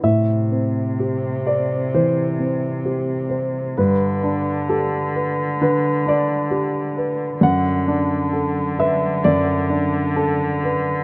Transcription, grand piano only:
\new Staff \with { instrumentName = "Grand piano" } { \time 4/4 \key a \dorian \tempo 4 = 65 << { e''4. d''8 c''2 | b'4 a'4 b'8 d''4 r8 | fis''4. e''8 d''4 a'4 | } \\ { a,8 c'8 g'8 c''8 e8 c'8 g'8 c''8 | g,8 d'8 g'8 b'8 d8 d'8 g'8 b'8 | fis,8 d'8 a'8 b'8 fis,8 d'4 b'8 | } >> }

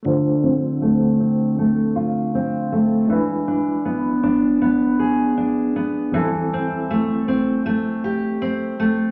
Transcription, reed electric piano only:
\new Staff \with { instrumentName = "Reed electric piano" } { \time 4/4 \key d \dorian \tempo 4 = 79 <a d' f' c''>1 | <gis d' e' b'>1 | <e, g c' e' a'>1 | }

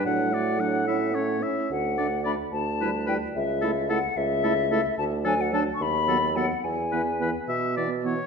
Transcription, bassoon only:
\new Staff \with { instrumentName = "Bassoon" } { \clef bass \time 6/8 \key a \mixolydian \tempo 4. = 73 a,2~ a,8 r8 | d,4. d,4. | cis,4. cis,4. | \key e \mixolydian d,4. dis,4. |
e,4. b,4. | }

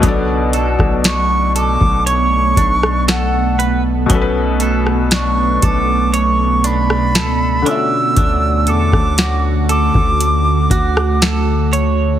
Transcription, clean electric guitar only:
\new Staff \with { instrumentName = "Clean electric guitar" } { \time 4/4 \key b \minor \tempo 4 = 59 b8 a'8 d'8 a'8 cis''8 d'8 a'8 b'16 r16 | b8 a'8 d'8 a'8 cis''8 d'8 a'8 d'8 | d'8 a'8 fis'8 a'4 fis'8 a'8 cis''8 | }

